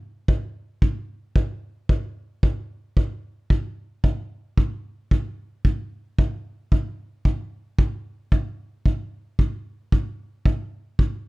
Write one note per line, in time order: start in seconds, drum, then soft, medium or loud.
0.28 kick medium
0.82 kick medium
1.36 kick medium
1.89 kick medium
2.43 kick medium
2.97 kick medium
3.50 kick medium
4.04 kick medium
4.58 kick medium
5.11 kick medium
5.65 kick medium
6.19 kick medium
6.72 kick medium
7.25 kick medium
7.79 kick medium
8.32 kick medium
8.86 kick medium
9.39 kick medium
9.92 kick medium
10.46 kick medium
10.99 kick medium